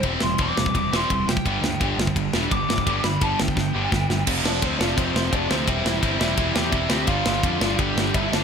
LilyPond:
<<
  \new Staff \with { instrumentName = "Lead electric guitar" } { \time 4/4 \key g \major \tempo 4 = 170 r8 c'''8 d'''4 d'''8 c'''8 c'''8 g''8~ | g''2~ g''8 r8 d'''4~ | d'''8 b''8 a''8 g''2~ g''8 | \key f \lydian r8 <d' d''>8 <c' c''>8 <d' d''>8 <c' c''>4 <d' d''>8 <c' c''>8 |
<e' e''>4. <e' e''>4 <g' g''>8 <e' e''>8 <g' g''>8 | <f' f''>2 <g' g''>4 <e' e''>8 <d' d''>8 | }
  \new Staff \with { instrumentName = "Distorted electric guitar" } { \time 4/4 \key g \major <e c' e' g'>2 <e c' e' g'>8 <e c' e' g'>4 r8 | <g b d' g'>2~ <g b d' g'>8 <g b d' g'>8 <g b d' g'>4 | <g b d' g'>2~ <g b d' g'>8 <g b d' g'>8 <g b d' g'>4 | \key f \lydian <f a c' f'>4 <f a c' f'>8 <f a c' f'>8 <f a c' f'>4 <f a c' f'>8 <f a c' f'>8 |
<e g c' e'>4 <e g c' e'>8 <e g c' e'>8 <e g c' e'>4 <e g c' e'>8 <e g c' e'>8 | <g, d g b d'>4 <g, d g b d'>8 <g, d g b d'>8 <g, d g b d'>4 <g, d g b d'>8 <g, d g b d'>8 | }
  \new Staff \with { instrumentName = "Distorted electric guitar" } { \clef bass \time 4/4 \key g \major <c g c'>8 <c g>8 <c g c'>8 <c g>8 <c g>8 <c g c'>8 <c g>8 <c g>8 | <g, d g>8 <g, d>8 <g, d g>8 <g, d>8 <g, d>8 <g, d g>8 <g, d>8 <g, d>8 | <g, d g>8 <g, d>8 <g, d g>8 <g, d>8 <g, d>8 <g, d g>8 <g, d>8 <g, d>8 | \key f \lydian <f, c f>4 <f, c f>8 <f, c f>8 <f, c f>4 <f, c f>8 <f, c f>8 |
<c g c'>4 <c g c'>8 <c g c'>8 <c g c'>4 <c g c'>8 <c g c'>8 | <g, d g>4 <g, d g>8 <g, d g>8 <g, d g>4 <g, d g>8 <g, d g>8 | }
  \new Staff \with { instrumentName = "Overdriven electric guitar" } { \clef bass \time 4/4 \key g \major <c g c'>8 <c g>8 <c g c'>8 <c g>8 <c g>8 <c g c'>8 <c g>8 <c g>8 | <g, d g>8 <g, d>8 <g, d g>8 <g, d>8 <g, d>8 <g, d g>8 <g, d>8 <g, d>8 | <g, d g>8 <g, d>8 <g, d g>8 <g, d>8 <g, d>8 <g, d g>8 <g, d>8 <g, d>8 | \key f \lydian <f, c f>4 <f, c f>8 <f, c f>8 <f, c f>4 <f, c f>8 <f, c f>8 |
<c g c'>4 <c g c'>8 <c g c'>8 <c g c'>4 <c g c'>8 <c g c'>8 | <g, d g>4 <g, d g>8 <g, d g>8 <g, d g>4 <g, d g>8 <g, d g>8 | }
  \new Staff \with { instrumentName = "Picked electric bass" } { \clef bass \time 4/4 \key g \major e,,8 e,,8 e,,8 e,,8 e,,8 e,,8 e,,8 e,,8 | g,,8 d,8 g,,8 g,,8 g,,8 e,,8 g,,8 g,,8 | g,,8 g,,8 g,,8 g,,8 g,,8 g,,8 g,,8 g,,8 | \key f \lydian f,,8 f,,8 d,8 f,,8 f,,8 f,,8 f,,8 d,8 |
e,,8 e,,8 g,,8 e,,8 e,,8 e,8 e,,8 d,8 | g,,8 g,,8 f,8 g,,8 g,,8 g,,8 g,,8 g,,8 | }
  \new DrumStaff \with { instrumentName = "Drums" } \drummode { \time 4/4 <bd cymr>8 sn8 <bd cymr>8 sn16 bd16 <bd cymr>8 sn8 <bd cymr>8 sn16 bd16 | <bd cymr>8 sn8 <bd cymr>8 sn16 bd16 <bd cymr>8 sn8 <bd cymr>8 sn16 bd16 | <bd cymr>8 sn8 <bd cymr>8 sn16 bd16 <bd sn>4 <bd sn>8 sn8 | <cymc bd>8 sn8 <bd cymr>8 sn8 <bd cymr>8 sn8 <bd cymr>8 sn8 |
<bd cymr>8 sn8 <bd cymr>8 sn8 <bd cymr>8 sn8 <bd cymr>8 sn8 | <bd cymr>8 sn8 <bd cymr>8 sn8 <bd cymr>8 sn8 <bd cymr>8 sn8 | }
>>